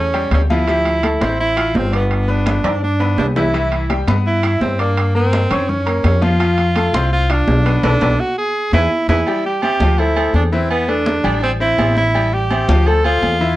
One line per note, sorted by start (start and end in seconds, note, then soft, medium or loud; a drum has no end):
0.00 0.28 E2 medium
0.00 0.30 C#4 medium
0.14 0.43 G3 medium
0.14 0.43 G4 medium
0.14 0.44 G5 medium
0.14 high conga soft
0.14 high timbale medium
0.31 1.15 D2 loud
0.31 0.42 C#4 medium
0.31 high conga medium
0.31 high timbale medium
0.31 low timbale medium
0.50 0.65 F3 medium
0.50 1.36 E4 loud
0.50 0.65 F4 medium
0.50 0.65 F5 medium
0.50 high conga medium
0.67 0.97 F3 medium
0.67 0.97 G4 medium
0.67 0.97 E5 medium
0.67 high conga soft
0.67 high timbale medium
0.85 high conga soft
0.85 high timbale medium
1.03 1.18 A3 medium
1.03 1.18 A4 medium
1.03 1.18 A5 medium
1.03 high conga medium
1.03 high timbale medium
1.21 1.71 A1 medium
1.21 1.50 C4 medium
1.21 1.51 C5 medium
1.21 1.51 C6 medium
1.21 high conga medium
1.21 high timbale medium
1.40 1.78 E4 loud
1.40 high conga soft
1.56 1.86 F4 medium
1.56 1.86 F5 medium
1.56 1.86 F6 medium
1.56 high conga soft
1.56 high timbale loud
1.74 2.58 G1 medium
1.74 1.94 C4 medium
1.74 high conga medium
1.74 low timbale medium
1.92 2.32 B3 medium
1.92 2.22 D4 medium
1.92 2.22 D5 medium
1.92 2.22 D6 medium
1.92 high conga soft
1.92 high timbale medium
2.11 high conga soft
2.11 high timbale medium
2.28 2.58 B3 medium
2.28 2.83 D4 medium
2.28 2.58 B4 medium
2.28 2.58 B5 medium
2.28 high conga soft
2.46 high conga medium
2.46 high timbale medium
2.64 3.14 G2 medium
2.64 2.94 D4 medium
2.64 2.94 D5 medium
2.64 2.94 D6 medium
2.64 high conga soft
2.64 low conga medium
2.64 high timbale loud
2.83 3.16 D4 loud
2.83 high conga soft
3.00 3.29 B3 medium
3.00 3.29 B4 medium
3.00 3.30 B5 medium
3.00 high conga soft
3.00 high timbale medium
3.18 4.01 C2 medium
3.18 3.27 D4 medium
3.18 high conga medium
3.18 low timbale medium
3.36 3.51 E3 medium
3.36 3.51 E4 medium
3.36 3.95 E4 medium
3.36 3.51 E5 medium
3.36 high conga medium
3.36 low timbale medium
3.53 3.83 E3 medium
3.53 3.83 E4 medium
3.53 3.83 E5 medium
3.53 high conga soft
3.53 high timbale medium
3.72 high conga soft
3.72 high timbale medium
3.89 4.04 G3 medium
3.89 4.04 G4 medium
3.89 4.04 G5 medium
3.89 high conga medium
3.89 high timbale medium
4.07 4.57 G2 medium
4.07 4.37 B3 medium
4.07 4.37 B4 medium
4.07 4.37 B5 medium
4.07 high conga medium
4.07 high timbale medium
4.26 4.59 E4 loud
4.26 high conga soft
4.43 4.73 E4 medium
4.43 4.73 E5 medium
4.43 4.73 E6 medium
4.43 high conga soft
4.43 high timbale loud
4.61 5.44 G2 medium
4.61 4.78 C4 medium
4.61 high conga medium
4.61 low timbale medium
4.79 5.13 A#3 medium
4.79 5.09 D4 medium
4.79 5.09 D5 medium
4.79 5.09 D6 medium
4.79 high conga soft
4.79 high timbale medium
4.97 high conga soft
4.97 high timbale medium
5.15 5.44 A#3 medium
5.15 5.70 C4 loud
5.15 5.44 A#4 medium
5.15 5.44 A#5 medium
5.15 high conga soft
5.33 high conga medium
5.33 high timbale medium
5.50 6.00 F#2 medium
5.50 5.80 C#4 medium
5.50 5.80 C#5 medium
5.50 5.80 C#6 medium
5.50 high conga soft
5.50 low conga medium
5.50 high timbale loud
5.69 6.04 C#4 medium
5.69 high conga soft
5.69 low conga medium
5.86 6.16 A#3 medium
5.86 6.16 A#4 medium
5.86 6.16 A#5 medium
5.86 high conga soft
5.86 high timbale medium
6.04 6.88 F2 medium
6.04 6.25 C#4 loud
6.04 high conga medium
6.04 high timbale medium
6.04 low timbale medium
6.22 6.36 F3 medium
6.22 6.36 F4 medium
6.22 7.12 F4 loud
6.22 6.37 F5 medium
6.22 high conga medium
6.40 6.69 F3 medium
6.40 6.69 F4 medium
6.40 6.70 F5 medium
6.40 high conga soft
6.40 high timbale medium
6.58 high conga soft
6.58 high timbale medium
6.76 6.91 A3 medium
6.76 6.91 A4 medium
6.76 6.91 A5 medium
6.76 high conga medium
6.76 high timbale medium
6.93 7.43 C2 loud
6.93 7.23 C4 medium
6.93 7.23 C5 medium
6.93 7.24 C6 medium
6.93 high conga medium
6.93 high timbale medium
7.12 7.32 F4 loud
7.12 high conga soft
7.29 7.83 D4 loud
7.29 7.59 F4 medium
7.29 7.59 F5 medium
7.29 7.59 F6 medium
7.29 high conga soft
7.29 high timbale medium
7.47 7.81 B1 medium
7.47 high conga medium
7.47 low timbale medium
7.65 7.80 B3 medium
7.65 7.80 B4 medium
7.65 7.80 B5 medium
7.65 high conga soft
7.65 high timbale medium
7.83 7.97 B1 loud
7.83 8.21 D4 loud
7.83 7.95 A4 loud
7.83 7.95 B4 loud
7.83 7.95 D5 loud
7.83 high conga loud
7.83 high timbale loud
8.01 8.14 B1 loud
8.01 8.13 A4 medium
8.01 8.13 B4 medium
8.01 8.13 D5 loud
8.01 high conga medium
8.01 high timbale medium
8.20 8.37 F#4 loud
8.38 8.71 G#4 loud
8.72 8.86 E2 loud
8.72 9.07 E4 loud
8.72 8.85 E4 loud
8.72 8.85 G#4 loud
8.72 8.85 B4 medium
8.72 high conga medium
8.72 high timbale loud
9.08 9.22 E2 loud
9.08 9.42 E4 medium
9.08 9.21 E4 medium
9.08 9.21 G#4 loud
9.08 9.20 B4 medium
9.08 high conga loud
9.08 high timbale medium
9.27 9.56 G3 medium
9.27 9.57 G4 medium
9.27 9.57 G5 medium
9.27 high conga soft
9.27 low agogo medium
9.45 9.62 G4 medium
9.45 high conga soft
9.62 9.77 C4 medium
9.62 10.00 G4 loud
9.62 9.78 C5 medium
9.62 9.78 E5 medium
9.62 high conga medium
9.62 low agogo loud
9.80 10.30 D2 medium
9.80 9.96 F3 medium
9.80 9.96 F4 medium
9.80 9.96 F5 medium
9.80 high conga loud
9.98 10.14 A3 medium
9.98 10.35 E4 loud
9.98 10.14 A4 medium
9.98 10.14 C5 medium
9.98 high conga soft
9.98 low agogo medium
10.16 10.46 A3 medium
10.16 10.46 A4 medium
10.16 10.46 C5 medium
10.16 high conga soft
10.16 low agogo loud
10.33 11.18 E2 loud
10.33 10.43 D4 medium
10.33 high conga medium
10.33 low agogo medium
10.52 10.82 E3 medium
10.52 10.70 C4 medium
10.52 10.82 E4 medium
10.52 10.82 E5 medium
10.52 high conga soft
10.70 10.91 B3 loud
10.70 high conga soft
10.70 low agogo loud
10.88 11.18 A3 medium
10.88 11.43 D4 loud
10.88 11.18 A4 medium
10.88 11.18 B4 medium
10.88 high conga soft
10.88 low agogo medium
11.06 high conga medium
11.24 11.74 A1 medium
11.24 11.53 G3 medium
11.24 11.54 G4 medium
11.24 11.54 G5 medium
11.24 high conga soft
11.24 low conga medium
11.24 low agogo loud
11.43 11.51 C4 loud
11.43 high conga soft
11.43 low agogo medium
11.60 11.75 C4 medium
11.60 11.94 E4 loud
11.60 11.75 C5 medium
11.60 11.76 E5 medium
11.60 high conga soft
11.78 12.62 A1 medium
11.78 12.08 C4 medium
11.78 12.09 C5 medium
11.78 12.09 E5 medium
11.78 high conga medium
11.78 low timbale medium
11.78 low agogo loud
11.97 12.35 E4 loud
11.97 high conga medium
12.15 12.44 G3 medium
12.15 12.45 G4 medium
12.15 12.44 G5 medium
12.15 high conga soft
12.15 low agogo medium
12.33 12.89 G4 loud
12.33 high conga soft
12.51 12.65 C4 medium
12.51 12.65 C5 medium
12.51 12.66 E5 medium
12.51 high conga medium
12.51 low agogo loud
12.68 13.18 D2 loud
12.68 12.83 F3 medium
12.68 12.83 F4 medium
12.68 12.84 F5 medium
12.68 high conga loud
12.86 13.01 A3 medium
12.86 13.01 A4 medium
12.86 13.05 A4 loud
12.86 13.02 C5 medium
12.86 high conga soft
12.86 low agogo medium
13.04 13.34 A3 medium
13.04 13.56 F4 loud
13.04 13.34 A4 medium
13.04 13.34 C5 medium
13.04 high conga soft
13.04 low agogo loud
13.22 13.56 E2 medium
13.22 high conga medium
13.22 low agogo medium
13.41 13.56 E3 medium
13.41 13.56 E4 medium
13.41 13.56 E5 medium
13.41 high conga soft